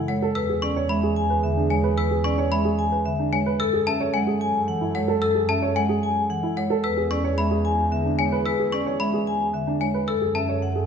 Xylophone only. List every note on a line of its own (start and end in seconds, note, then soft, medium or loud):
0.08 0.26 F#5 medium
0.35 0.53 E6 medium
0.62 0.80 C#6 medium
0.89 1.07 B5 medium
1.70 1.88 G#5 medium
1.98 2.15 E6 medium
2.24 2.42 C#6 medium
2.52 2.69 B5 medium
3.33 3.50 G#5 medium
3.60 3.77 E6 medium
3.87 4.04 A5 medium
4.14 4.31 G#5 medium
4.95 5.12 F#5 medium
5.22 5.39 E6 medium
5.49 5.66 A5 medium
5.76 5.93 G#5 medium
6.57 6.74 F#5 medium
6.84 7.01 E6 medium
7.11 7.28 C#6 medium
7.38 7.55 B5 medium
8.19 8.36 G#5 medium
8.46 8.63 E6 medium
8.72 8.90 C#6 medium
9.00 9.18 B5 medium
9.81 9.99 G#5 medium
10.08 10.26 E6 medium
10.35 10.53 A5 medium